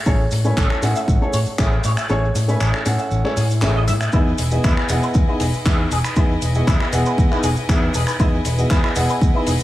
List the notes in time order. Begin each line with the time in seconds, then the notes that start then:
0.06 A1 A3 C#4 E4 G#4 A4 C#5, kick, maracas
0.31 A2, open hi-hat, maracas
0.44 A3 C#4 E4 B4 C#5 G#5, maracas
0.57 A1 A4, kick, clap, maracas
0.70 A4, finger snap
0.82 A2 A3 C#4 E4 F#5 G#5, open hi-hat, maracas
0.96 E5, maracas
1.08 A1, kick, maracas
1.21 A3 C#4 E4 G#4 A4 C#5
1.33 A2 C#5, open hi-hat, maracas
1.46 muted fingered electric bass stroke, maracas
1.58 A1 A3 C#4 E4 G#4 E5, kick, clap, maracas
1.84 A2 C#5, open hi-hat, maracas
1.97 E5, finger snap, maracas
2.09 A1 A3 C#4 E4 G#4 A4 C#5, maracas
2.35 A2, open hi-hat, maracas
2.48 A3 C#4 E4 B4 C#5 G#5, maracas
2.60 A1 A4, clap, maracas
2.74 A4, finger snap
2.86 A2 A3 C#4 E4 F#5 G#5, open hi-hat, maracas
2.99 E5, maracas
3.11 A1, swell, maracas
3.24 A3 C#4 E4 G#4 A4 C#5, clap
3.37 A2 G#4, open hi-hat, maracas
3.50 maracas
3.62 A1 A3 C#4 E4 G#4 E5, clap, maracas
3.75 D#5
3.88 A2 E5, open hi-hat, maracas
4.01 E5, finger snap, maracas
4.12 E2 B3 D#4 E4 G#4 B4 D#5 G#5, kick, maracas
4.38 E1, open hi-hat, maracas
4.51 B3 E4 F#4 G#4 D#5, maracas
4.64 E2 E4, kick, clap, maracas
4.77 E4, finger snap
4.89 E1 B3 E4 G#4 D#5 F#5, open hi-hat, maracas
5.03 B4, maracas
5.14 E2, kick, maracas
5.27 B3 D#4 E4 G#4 D#5
5.40 E1 G#4, open hi-hat, maracas
5.53 muted fingered electric bass stroke, maracas
5.65 E2 B3 D#4 E4 G#4 E5, kick, clap, maracas
5.91 E1 G#4, open hi-hat, maracas
6.04 B4, finger snap, maracas
6.16 E2 B3 D#4 E4 G#4 D#5, kick, maracas
6.42 E1, open hi-hat, maracas
6.54 B3 E4 F#4 G#4 D#5, maracas
6.67 E2 E4, kick, clap, maracas
6.80 E4, finger snap
6.92 E1 B3 E4 G#4 D#5 F#5, open hi-hat, maracas
7.06 B4, maracas
7.18 E2, kick, maracas
7.31 B3 D#4 E4 G#4 D#5, clap
7.43 E1 G#4, open hi-hat, maracas
7.56 muted fingered electric bass stroke, maracas
7.69 E2 B3 D#4 E4 G#4 E5, kick, clap, maracas
7.94 E1 G#4, open hi-hat, maracas
8.07 B4, finger snap, maracas
8.19 E2 B3 D#4 E4 G#4 D#5, kick, maracas
8.45 E1, open hi-hat, maracas
8.58 B3 E4 F#4 G#4 D#5, maracas
8.71 E2 E4, kick, clap, maracas
8.84 E4, finger snap
8.95 E1 B3 E4 G#4 D#5 F#5, open hi-hat, maracas
9.09 B4, maracas
9.21 E2, kick, maracas
9.34 B3 D#4 E4 G#4 D#5
9.47 E1 G#4, open hi-hat, maracas
9.60 muted fingered electric bass stroke, maracas